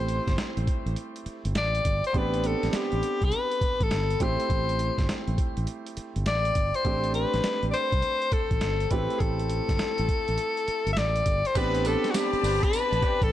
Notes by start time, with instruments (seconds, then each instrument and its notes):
Already playing: fingered electric bass A1, grand piano A3 C4 E4 G4, alto saxophone C5
0.08 closed hi-hat
0.27 fingered electric bass G1, kick, snare, closed hi-hat
0.38 snare, closed hi-hat
0.57 fingered electric bass A1, closed hi-hat
0.67 kick, closed hi-hat
0.86 fingered electric bass A1, closed hi-hat
0.96 closed hi-hat
1.16 closed hi-hat
1.26 muted fingered electric bass stroke, closed hi-hat
1.45 fingered electric bass G1, closed hi-hat
1.55 fingered electric bass A1, alto saxophone D5, snare, closed hi-hat
1.75 closed hi-hat
1.85 fingered electric bass G1, kick, closed hi-hat
2.04 alto saxophone C5, closed hi-hat
2.13 fingered electric bass A1, grand piano B3 C4 D4 G4, kick, closed hi-hat
2.18 alto saxophone B4
2.34 closed hi-hat
2.44 alto saxophone A4, closed hi-hat
2.63 fingered electric bass A1, snare, closed hi-hat
2.70 alto saxophone A4, snare, closed hi-hat
2.76 alto saxophone G4
2.92 fingered electric bass A1, closed hi-hat
3.03 closed hi-hat
3.22 fingered electric bass C2, alto saxophone B4, kick, closed hi-hat
3.32 closed hi-hat
3.51 closed hi-hat
3.61 muted fingered electric bass stroke, kick, closed hi-hat
3.80 fingered electric bass A1, alto saxophone A4, kick, closed hi-hat
3.91 fingered electric bass G1, snare, closed hi-hat
4.10 closed hi-hat
4.20 fingered electric bass A1, grand piano A3 C4 E4 G4, alto saxophone C5, kick, closed hi-hat
4.40 closed hi-hat
4.50 fingered electric bass A1, kick, closed hi-hat
4.69 closed hi-hat
4.79 closed hi-hat
4.98 fingered electric bass G1, kick, snare, closed hi-hat
5.09 muted fingered electric bass stroke, snare, closed hi-hat
5.27 fingered electric bass A1, closed hi-hat
5.38 kick, closed hi-hat
5.57 fingered electric bass A1, closed hi-hat
5.67 closed hi-hat
5.87 closed hi-hat
5.97 muted fingered electric bass stroke, closed hi-hat
6.16 fingered electric bass G1, closed hi-hat
6.26 fingered electric bass A1, alto saxophone D5, snare, closed hi-hat
6.45 closed hi-hat
6.55 fingered electric bass G1, kick, closed hi-hat
6.74 alto saxophone C5, closed hi-hat
6.85 fingered electric bass A1, grand piano A3 C4 D4 G4, kick, closed hi-hat
7.04 closed hi-hat
7.14 alto saxophone B4, closed hi-hat
7.34 fingered electric bass A1, snare, closed hi-hat
7.44 snare, closed hi-hat
7.63 fingered electric bass A1, closed hi-hat
7.71 alto saxophone C5 D5, closed hi-hat
7.92 fingered electric bass C2, kick, closed hi-hat
8.02 closed hi-hat
8.22 closed hi-hat
8.32 alto saxophone A4, muted fingered electric bass stroke, kick, closed hi-hat
8.51 fingered electric bass A1, kick, closed hi-hat
8.61 fingered electric bass G1, snare, closed hi-hat
8.80 closed hi-hat
8.91 fingered electric bass A1, grand piano A3 C4 E4 G4, alto saxophone B4, kick, closed hi-hat
9.10 closed hi-hat
9.18 fingered electric bass A1, alto saxophone G#4 A4, kick, closed hi-hat
9.39 closed hi-hat
9.50 closed hi-hat
9.69 fingered electric bass G1, kick, snare, closed hi-hat
9.79 muted fingered electric bass stroke, snare, closed hi-hat
9.98 fingered electric bass A1, closed hi-hat
10.09 kick, closed hi-hat
10.28 fingered electric bass A1, closed hi-hat
10.38 closed hi-hat
10.57 closed hi-hat
10.68 muted fingered electric bass stroke, closed hi-hat
10.86 fingered electric bass G1, closed hi-hat
10.93 alto saxophone E5, closed hi-hat
10.97 fingered electric bass A1, alto saxophone D5, snare
11.16 closed hi-hat
11.26 fingered electric bass G1, kick, closed hi-hat
11.45 alto saxophone C5, closed hi-hat
11.55 fingered electric bass A1, grand piano B3 C4 D4 G4, horn section C4 D4 G4 B4, string section G4 D5 A5 B5, alto saxophone B4, kick, closed hi-hat, crash, tambourine
11.75 closed hi-hat
11.84 horn section C4 D4 G4 B4, alto saxophone A4, closed hi-hat, tambourine
12.04 snare, closed hi-hat
12.11 alto saxophone F#4, snare, closed hi-hat, tambourine
12.16 alto saxophone G4
12.33 muted fingered electric bass stroke, closed hi-hat
12.43 fingered electric bass G1, horn section C4 D4 G4 B4, open hi-hat, tambourine
12.63 alto saxophone B4, kick, closed hi-hat
12.73 closed hi-hat, tambourine
12.92 fingered electric bass A1, closed hi-hat
13.02 horn section C4 D4 G4 B4, kick, closed hi-hat
13.21 fingered electric bass A1, alto saxophone A4, kick, closed hi-hat